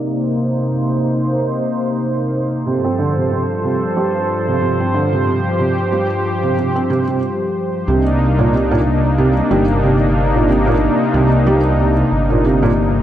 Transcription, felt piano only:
X:1
M:4/4
L:1/16
Q:"Swing 16ths" 1/4=92
K:Cdor
V:1 name="Felt piano" clef=bass
z16 | C, C D, C, C, z C, z G, z2 C, C, C D, C, | C, z C, z G, z2 C, C, C C, C, z4 | C, z2 B,, C, B,, z2 C, z G, z C, z2 B,, |
C, B,, z2 C, z G, z C, z2 B,, C, B,, z2 |]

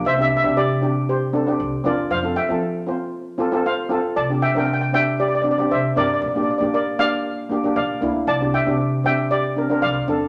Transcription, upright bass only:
X:1
M:4/4
L:1/16
Q:1/4=117
K:Cmix
V:1 name="Upright bass" clef=bass
C,,2 z C,8 z C,, z E,,2 | F,,2 z F,8 z4 z | C,2 z8 z2 C, z G,,2 | B,,2 z B,,8 z B,, z D,,2 |
C,,2 z C,8 z C,, z E,,2 |]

